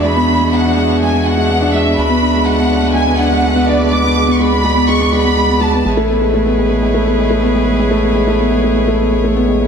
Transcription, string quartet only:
Already playing: E3 D4 F#4 G#4 E5
1.98 D3 B4
3.92 D5
5.85 E4 G#4 B4 C#5

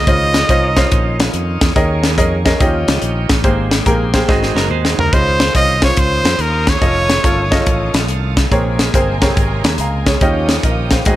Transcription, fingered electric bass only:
0.07 C#2
0.49 C2
0.92 A#1
1.34 F2
1.61 E2
1.76 D#2
2.18 F2
2.60 D#2
2.88 C#2
3.02 A#1
3.30 A1
3.44 G#1
3.86 A#1
4.29 G#1
4.55 F#1
4.70 D#2
4.98 D2
5.13 C#2
5.55 C2
5.97 C#2
6.24 F2
6.39 D#2
6.82 F1
7.24 G1
7.67 A1
7.94 A#1
8.09 C2
8.51 A#1
8.94 G1
9.37 G#1
9.64 D#2
9.78 C#2
10.21 D#2
10.63 A#1
11.06 G#1

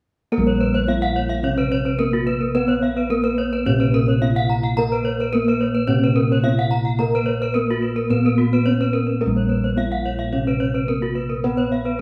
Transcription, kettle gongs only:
0.32 A#4
0.38 A#1
0.88 B3
2.00 B3
2.55 B4
3.10 B3
3.66 A#2
4.22 B3
4.79 A#4
5.33 B3
5.89 A#2
6.45 B3
7.00 A#4
7.55 B3
8.10 A#2
8.66 B3
9.21 A#4
9.26 A#1
9.77 B3
10.88 B3
11.44 B4

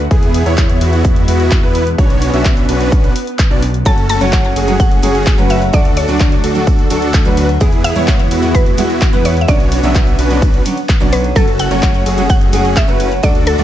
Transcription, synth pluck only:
3.86 A5
4.10 A5
4.80 F#5
5.50 E5
5.74 D5
5.97 C#5
7.84 E5
8.55 B4
9.25 C#5
9.41 E5
9.48 D5
11.13 B4
11.36 A4
11.60 F#5
12.30 F#5
12.77 E5
13.24 D5
13.47 A4

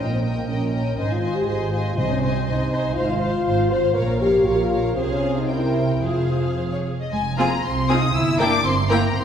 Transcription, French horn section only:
0.09 C4
0.34 A#3
0.47 C#4
0.97 D#4
1.11 F4
1.35 G4
1.47 G#4
1.73 F4
1.98 D#4
2.10 C#4
2.35 C4
2.47 D#4
2.95 F4
3.04 D#4
3.09 F4
3.70 C5
3.95 A#4
4.21 G4
4.45 F4
4.96 C4
5.10 C#4
5.38 D#4
5.51 E4
6.04 F4

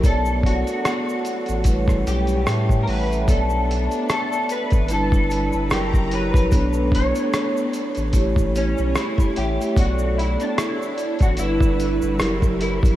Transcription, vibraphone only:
0.02 B3 A4 C#5 D5
1.64 G3 A3 E4 B4
1.74 C#5
2.47 E5 G5 A5
2.70 C#5 G5
2.88 F#5
3.10 A4 E5
3.26 B3 A4 C#5 D5
4.89 G3 D4 E4 B4
5.68 F#3 E4 G4 A#4
6.10 F#3 E4 G4 C#5
6.51 B3 D4 A4 C#5
8.13 A3 E4 G4 C#5
9.34 A3 E4 G4 E5
9.74 B3 A4 C#5 D5
11.37 G3 D4 E4 B4
12.18 F#3 E4 G4 A#4
12.59 F#3 E4 G4 A#4

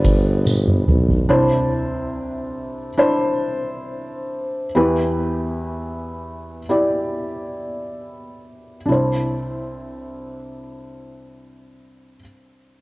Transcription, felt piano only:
Already playing: D3 G3 B3 B4 C5 D5
1.29 C2 C3 D4 E4 C5
2.97 D4 E4 C5
4.75 E2 E3 E4 G4 B4
6.69 E4 G4 D5
8.86 C2 D4 E4
8.92 C5

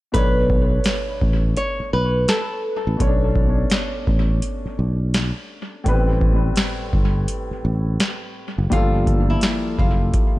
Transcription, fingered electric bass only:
0.15 B1
1.22 A1
1.80 muted fingered electric bass stroke
1.93 B1
2.87 A1
3.00 B1
4.07 A1
4.66 muted fingered electric bass stroke
4.79 B1
5.86 A1
6.93 G1
7.51 muted fingered electric bass stroke
7.65 A1
8.58 F#1
8.72 G1
9.79 F#1

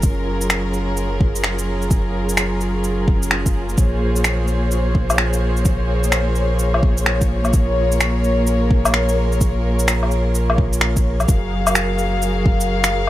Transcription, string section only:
Already playing: F#3 C#4 F4 G#4 A#4
3.78 A#3 C5 C#5
7.54 A#4
11.27 F#3 F#4 G#4 A#4 F5

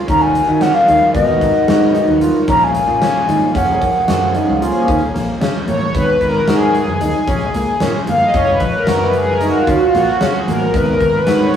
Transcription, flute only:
0.10 A#5
0.22 G#5
0.62 F#5
0.74 F5
1.14 D#5
2.50 A#5
2.64 G#5
3.57 F#5

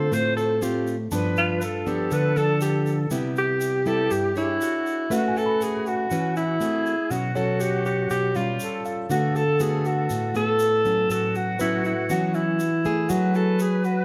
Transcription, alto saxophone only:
Already playing: A4
0.14 C5
0.37 A4
0.63 G4
1.38 F4
1.87 G4
2.13 B4
2.37 A4
2.62 G4
3.38 G4
3.87 A4
4.12 G4
4.37 E4
5.13 F#4
5.37 A4
5.63 G#4
5.88 F#4
6.37 E4
7.11 F#4
7.36 A4
7.60 G4
7.86 G4
8.10 G4
8.36 F4
9.11 F#4
9.36 A4
9.61 G#4
9.87 F#4
10.36 A4
11.11 A4
11.36 F#4
11.61 E4
11.86 E4
12.11 F#4
12.35 E4
13.10 F#4
13.35 A4
13.61 G#4
13.85 F#4

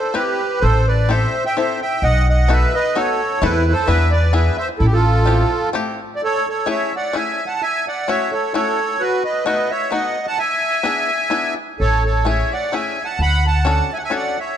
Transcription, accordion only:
Already playing: A4 C5
0.14 G4 B4
0.61 A4 C5
0.87 B4 D5
1.10 C5 E5
1.46 E5 G5
1.57 C5 E5
1.82 E5 G5
2.03 D#5 F#5
2.29 D#5 F#5
2.50 B4 E5
2.74 B4 D#5
2.96 A4 C#5
3.42 E4 B4
3.72 A4 C5
3.87 B4 E5
4.10 B4 D5
4.34 B4 E5
4.57 C5 E5
4.79 E4 A4
4.86 G4
4.93 F4 A4
6.16 D5
6.24 A4 C#5
6.48 A4 C#5
6.69 C#5 E5
6.95 D5 F#5
7.16 E5 G#5
7.47 F#5 A5
7.62 E5 G#5
7.88 D5 F#5
8.08 C#5 E5
8.32 A4 C#5
8.54 A4 C#5
9.00 F#4 B4
9.24 B4 D#5
9.46 B4 D#5
9.70 C#5 E5
9.92 D#5 F#5
10.27 F#5 A5
10.39 E5 G#5
11.80 A4 C#5
12.05 A4 C#5
12.27 C#5 E5
12.52 D5 F#5
12.73 E5 G#5
13.05 F#5 A5
13.22 F#5 B5
13.47 F#5 A5
13.69 F#5 A5
13.93 E5 G#5
13.98 F#5
14.04 E5 G#5
14.15 D5 F#5
14.39 C#5 E5

